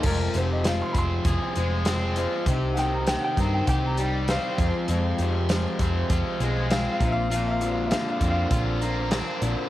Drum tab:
CC |x-------|--------|--------|--------|
HH |-xxxxxxx|xxxxxxxx|xxxxxxxx|xxxxxxxx|
SD |--o---o-|-oo---o-|--o---o-|--o---o-|
BD |o--oo---|o--oo--o|---oo--o|---oo---|